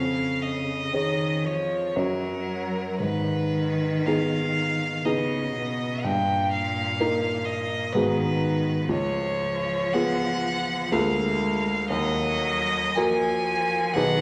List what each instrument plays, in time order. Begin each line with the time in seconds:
Already playing: grand piano F2, cello C#3, violin F5
0.42 violin D#5
0.91 cello D#3, grand piano C#4 G#4 C#5
1.45 cello F3, violin C#5
1.96 grand piano F#2 C#4 F#4 C#5, cello F#3, violin A#4
2.98 grand piano G#2, cello D#3, violin B4
4.06 grand piano B3 D#4 G#4, violin F5
5.05 cello C#3, grand piano B3 D#4 G#4, violin D#5
5.55 cello B2
6.04 grand piano G2, cello A#2, violin G5
6.52 violin F5
7.00 grand piano A#3 D#4 A#4
7.45 violin D#5
7.93 grand piano G#2 B3 F#4 G#4, cello D#3, violin B4
8.89 grand piano C#2, cello F3, violin C#5
9.94 grand piano B3 F4 G#4, violin F#5
10.92 grand piano D2 A#3 F4 G#4, cello G#3, violin F5
11.89 grand piano D#2, cello F#3, violin D#5
12.95 cello F3, grand piano A#3 F#4 A#4, violin G#5
13.93 grand piano B1 D#4 G#4 B4, cello D#3, violin F#5